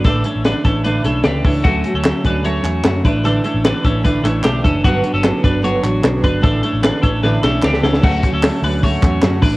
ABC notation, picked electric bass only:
X:1
M:4/4
L:1/16
Q:1/4=150
K:D
V:1 name="Picked electric bass" clef=bass
A,,,2 z A,,,2 z A,,,4 B,,,2 C,,2 C,,2 | D,,2 z D,,2 z D,,4 E,,2 F,,2 A,,,2- | A,,,2 z A,,,2 z A,,,4 A,,,2 B,,,2 F,,,2 | G,,,2 z G,,,2 z G,,,4 A,,,2 B,,,2 G,,,2 |
A,,,2 z A,,,2 z A,,,4 B,,,2 C,,2 C,,2 | D,,2 z D,,2 z D,,4 E,,2 F,,2 A,,,2 |]